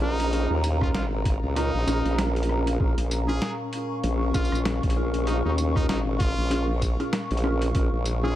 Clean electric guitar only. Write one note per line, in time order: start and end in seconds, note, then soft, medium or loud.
0.01 0.29 C#4 medium
0.01 0.29 F4 medium
0.01 0.29 G#4 medium
0.01 0.29 A#4 medium
0.32 0.55 C#4 medium
0.32 0.55 F4 medium
0.32 0.55 G#4 medium
0.32 0.55 A#4 medium
0.81 1.01 C#4 medium
0.81 1.01 F4 medium
0.81 1.01 G#4 medium
0.81 1.01 A#4 medium
1.56 1.71 C#4 medium
1.56 1.71 F4 medium
1.56 1.71 G#4 medium
1.56 1.71 A#4 loud
1.87 2.77 C#4 loud
1.87 2.77 F4 medium
1.87 2.77 G#4 medium
1.87 2.77 A#4 loud
2.80 2.95 C#4 medium
2.80 2.95 F4 medium
2.80 2.95 G#4 medium
2.80 2.95 A#4 medium
3.28 3.40 C#4 medium
3.28 3.40 F4 medium
3.28 3.40 G#4 medium
3.28 3.40 A#4 medium
4.34 4.57 C#4 medium
4.34 4.57 F4 medium
4.34 4.57 G#4 medium
4.34 4.57 A#4 loud
4.96 5.24 C#4 medium
4.96 5.24 F4 medium
4.96 5.24 G#4 medium
4.96 5.24 A#4 medium
5.27 5.50 C#4 medium
5.27 5.50 F4 medium
5.27 5.50 G#4 medium
5.27 5.50 A#4 medium
5.76 5.95 C#4 medium
5.76 5.95 F4 medium
5.76 5.95 G#4 medium
5.76 5.95 A#4 medium
6.51 6.66 C#4 medium
6.51 6.66 F4 medium
6.51 6.66 G#4 medium
6.51 6.66 A#4 loud
7.00 7.11 C#4 medium
7.00 7.11 F4 medium
7.00 7.11 G#4 medium
7.00 7.11 A#4 loud
7.43 7.66 C#4 medium
7.43 7.66 F4 medium
7.43 7.66 G#4 medium
7.43 7.66 A#4 medium
7.74 7.90 C#4 medium
7.74 7.90 F4 medium
7.74 7.90 G#4 medium
7.74 7.90 A#4 medium
8.23 8.35 C#4 medium
8.23 8.35 F4 medium
8.23 8.35 G#4 medium
8.23 8.35 A#4 medium